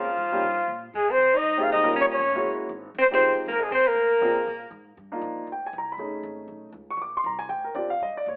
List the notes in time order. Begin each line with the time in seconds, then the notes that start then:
Already playing: A#2 F3 F4
0.17 G#2
0.32 G3 A#3 C#4 D#4 G4
0.43 G2
0.68 A#2
0.94 G#2 G#3 G#4
1.10 C4 C5
1.18 C3
1.33 D#4 D#5, muted upright bass stroke
1.44 G2
1.57 G#3 A#3 C4 D#4 F4 G4
1.63 F5
1.70 C2 D#4 D#5
1.83 G3 A#3 C#4 F4 A#4
1.94 G1 C#4
2.01 C#5
2.11 C#4 C#5
2.19 F1
2.35 G#3 A#3 C#4 E4 F#4
2.45 F#1
2.69 G#1
2.95 F1
2.99 C4 C5
3.11 G#3 C4 D#4 F4 G4 C5
3.21 G1
3.46 G#1 A#3
3.51 A#4
3.60 G#3 G#4
3.70 D#2 C4 C5
3.86 A#3 A#4, muted upright bass stroke
3.94 D2
4.21 F2 A#3 C4 D4 F4 G#4
4.47 A#2
4.71 G#2
4.97 G2
5.12 A#3 D4 D#4 F4
5.21 F2
5.47 D2
5.52 G5
5.66 G#5
5.73 C2
5.78 A#5
5.92 B5
5.98 F1 A3 C#4 D#4 G#4
6.23 G#1
6.48 B1
6.72 C#2
6.90 C#6
6.97 A#1 C#6
7.02 D6
7.17 C6
7.24 C2 A#5
7.39 G#5
7.49 D2 G5
7.64 A#4
7.75 F2 C4 D4 F4 G4 D5
7.90 F5
8.00 G2 D#5
8.16 D5, muted upright bass stroke
8.26 A#2 C#5